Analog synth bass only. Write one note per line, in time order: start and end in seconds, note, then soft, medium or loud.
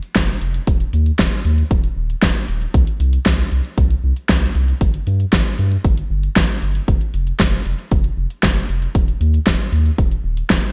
0.16 0.34 F1 medium
0.41 0.60 F1 loud
0.67 0.86 D#1 medium
0.93 1.12 D#2 medium
1.19 1.28 D#1 medium
1.45 1.63 D#2 loud
1.71 1.89 D#1 medium
1.96 2.15 D#1 loud
2.23 2.32 D#1 medium
2.48 2.67 D#1 medium
2.74 2.83 C2 medium
3.00 3.18 C2 loud
3.26 3.44 C2 loud
3.52 3.61 C2 medium
3.78 3.96 C2 loud
4.04 4.13 C2 loud
4.29 4.48 C2 loud
4.55 4.73 C2 loud
4.81 4.99 G1 medium
5.07 5.25 G2 medium
5.33 5.42 G1 medium
5.59 5.77 G2 loud
5.84 6.03 G1 medium
6.10 6.29 G1 loud
6.36 6.46 G1 medium
6.62 6.80 G1 medium
6.88 6.97 F1 medium
7.14 7.32 F1 loud
7.40 7.58 F1 loud
7.66 7.75 F1 medium
7.92 8.10 F1 medium
8.17 8.27 F1 loud
8.43 8.62 F1 medium
8.69 8.87 F1 loud
8.95 9.13 D#1 medium
9.21 9.39 D#2 medium
9.47 9.56 D#1 medium
9.72 9.91 D#2 loud
9.98 10.17 D#1 medium
10.24 10.42 D#1 loud
10.50 10.59 D#1 medium